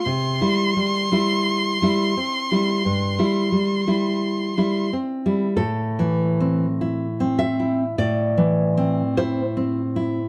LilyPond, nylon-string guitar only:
\new Staff \with { instrumentName = "Nylon-string guitar" } { \time 4/4 \key c \major \tempo 4 = 48 << { r1 | \key a \minor a'4. e''8 d''4 c''4 | } \\ { c16 <g e'>16 g16 <g e'>8 <g e'>16 c'16 <g e'>16 g,16 <g e'>16 g16 <g e'>8 <g e'>16 c'16 <g e'>16 | \tuplet 3/2 { a,8 e8 c'8 e'8 c'8 e'8 a,8 e8 c'8 e'8 c'8 e'8 } | } >> }